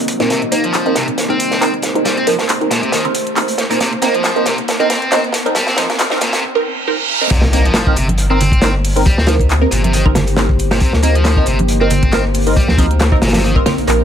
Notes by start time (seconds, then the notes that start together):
Already playing: A#3 C4 D#4 G4 D#5, riser
0.08 kick, closed hi-hat
0.20 A#2 C4 D#4 A#4, snare, closed hi-hat
0.30 C3 C5, snare, closed hi-hat
0.42 closed hi-hat
0.52 A#3 C4 D#4 A#4, closed hi-hat
0.64 F3, closed hi-hat
0.74 clap, closed hi-hat
0.86 C4 D#4 A#4, closed hi-hat
0.95 C3, snare, closed hi-hat
1.08 closed hi-hat
1.18 snare, closed hi-hat
1.30 C4 D#4 A#4, closed hi-hat
1.40 closed hi-hat
1.51 snare, closed hi-hat
1.61 C4 D#4 A#4, clap, closed hi-hat
1.74 closed hi-hat
1.82 snare, closed hi-hat
1.95 C4 D#4 A#4, closed hi-hat
2.05 G3, snare, closed hi-hat
2.17 C4, closed hi-hat
2.27 F3 C4 D#4 A#4, closed hi-hat
2.39 snare, closed hi-hat
2.49 clap, closed hi-hat
2.61 C4 D#4 A#4, closed hi-hat
2.71 A#2, snare, closed hi-hat
2.83 C3, closed hi-hat
2.92 D#3, snare, closed hi-hat
3.05 C4 D#4 A#4, closed hi-hat
3.14 closed hi-hat
3.27 closed hi-hat
3.36 C4 D#4 A#4, clap, closed hi-hat
3.48 closed hi-hat
3.58 snare, closed hi-hat
3.70 A#2 C4 D#4 A#4, closed hi-hat
3.80 C3 A5, snare, closed hi-hat
3.93 closed hi-hat
4.02 A#3 C4 D#4 A#4, snare, closed hi-hat
4.14 F3, closed hi-hat
4.24 snare, clap, closed hi-hat
4.36 C4 D#4 A#4, closed hi-hat
4.46 C3, snare, closed hi-hat
4.58 closed hi-hat
4.68 snare, closed hi-hat
4.80 C4 D#4 A#4, closed hi-hat
4.90 snare, closed hi-hat
5.02 closed hi-hat
5.12 C4 D#4 A#4, snare, clap, closed hi-hat
5.24 closed hi-hat
5.33 snare, closed hi-hat
5.46 C4 D#4 A#4, closed hi-hat
5.55 G3, snare, closed hi-hat
5.67 C4, snare, closed hi-hat
5.76 F3 C4 D#4 A#4, snare, closed hi-hat
5.90 snare, closed hi-hat
5.99 snare, clap, closed hi-hat
6.10 C4 D#4 A#4, snare, closed hi-hat
6.21 A#2, snare, closed hi-hat
6.33 C3, snare, closed hi-hat
6.43 reverse cymbal
6.55 C4 D#4 A#4
6.88 C4 D#4 A#4
7.21 C4 D#4 A#4
7.30 C2 C3 A#3 C4 D#4 G4 C5, kick, closed hi-hat, crash, impact
7.41 snare
7.53 A#3 C4 D#4 A#4, closed hi-hat
7.65 F3, closed hi-hat
7.74 snare, clap, closed hi-hat
7.87 C4 D#4 A#4, kick
7.96 G1 C3, closed hi-hat
8.08 closed hi-hat, high conga
8.18 closed hi-hat
8.30 C4 D#4 A#4
8.40 closed hi-hat, low conga
8.52 kick, closed hi-hat
8.62 C4 D#4 A#4, snare, clap, closed hi-hat
8.84 closed hi-hat, open hi-hat
8.96 C4 D#4 A#4, closed hi-hat
9.06 D2 G3, kick, closed hi-hat
9.18 D2 C4, snare
9.27 F3 C4 D#4 A#4, snare, closed hi-hat
9.28 closed hi-hat
9.40 kick, closed hi-hat
9.49 clap, closed hi-hat
9.61 C4 D#4 A#4
9.71 G1 A#2, closed hi-hat
9.84 C3, closed hi-hat, high conga
9.93 D#3, closed hi-hat
10.05 C4 D#4 A#4, kick
10.15 snare, closed hi-hat, low conga
10.27 closed hi-hat
10.37 C4 D#4 A#4, snare, clap, closed hi-hat
10.49 kick
10.59 closed hi-hat
10.71 A#2 C4 D#4 A#4, snare, closed hi-hat
10.80 D2 C3, kick, closed hi-hat
10.93 D2, snare
11.03 A#3 C4 D#4 A#4, closed hi-hat
11.15 F3, closed hi-hat
11.25 snare, clap, closed hi-hat
11.36 C4 D#4 A#4, kick
11.46 G1 C3, closed hi-hat
11.59 closed hi-hat, high conga
11.68 closed hi-hat
11.81 C4 D#4 A#4
11.90 closed hi-hat, low conga
12.03 kick, closed hi-hat
12.12 C4 D#4 A#4, snare, clap, closed hi-hat
12.34 closed hi-hat, open hi-hat
12.47 C4 D#4 A#4, closed hi-hat
12.56 D2 G3, kick, closed hi-hat
12.68 D2 C4, snare, high conga
12.78 F3 C4 D#4 A#4, kick, closed hi-hat
12.91 closed hi-hat
12.99 snare, clap, closed hi-hat
13.12 C4 D#4 A#4, kick
13.22 G1 A#2, snare, closed hi-hat
13.28 snare, closed hi-hat
13.33 C3, snare, closed hi-hat, high conga
13.38 snare, closed hi-hat
13.44 D#3, closed hi-hat
13.56 C4 D#4 A#4, kick
13.66 C4 D#4 A#4, snare, closed hi-hat, low conga
13.78 A#1, closed hi-hat
13.87 A#1 C4 D#4 A#4, clap, closed hi-hat